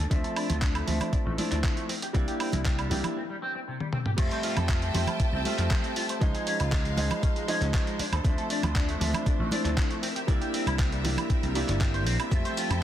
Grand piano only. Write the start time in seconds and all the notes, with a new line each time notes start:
0.10 F3 A3 C4 E5
0.87 F3 A3 C4 E5
1.38 F3 A3 C4 E4
2.13 G3 A#3 D4 E4
2.90 G3 A#3 D4 E4
4.17 G3 A3 C4 E5
4.94 G3 A3 C4 E5
5.44 G3 A3 C4 E5
6.20 F3 G#3 D#4 C5
6.97 F3 G#3 D#4 C5
7.47 F3 G#3 D#4 C5
8.23 F3 A3 C4 E5
9.00 F3 A3 C4 E5
9.51 F3 A3 C4 E4
10.27 G3 A#3 D4 E4
11.04 G3 A#3 D4 E4
11.54 G3 A#3 D4 E4
12.31 G3 A3 C4 E5